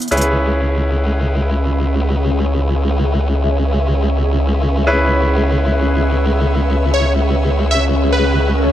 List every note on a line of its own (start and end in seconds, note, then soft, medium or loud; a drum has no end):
0.00 0.11 E5 medium
0.00 closed hi-hat soft
0.08 8.72 C#4 medium
0.08 4.84 C#4 medium
0.08 4.83 E4 medium
0.08 4.83 G#4 medium
0.08 4.84 B4 medium
0.08 closed hi-hat soft
0.12 8.72 C#2 medium
0.12 8.72 B4 medium
0.12 8.72 E5 medium
0.12 8.72 C#6 medium
0.12 closed hi-hat soft
0.17 closed hi-hat soft
0.21 8.72 G#4 medium
0.21 closed hi-hat soft
0.48 8.72 C#5 medium
1.40 8.72 E5 medium
4.87 8.72 C#4 medium
4.87 8.72 E4 medium
4.87 8.72 G#4 medium
4.87 8.72 B4 medium
6.94 7.12 C#5 medium
7.71 7.85 E5 medium
8.12 8.72 B4 medium
8.43 swell medium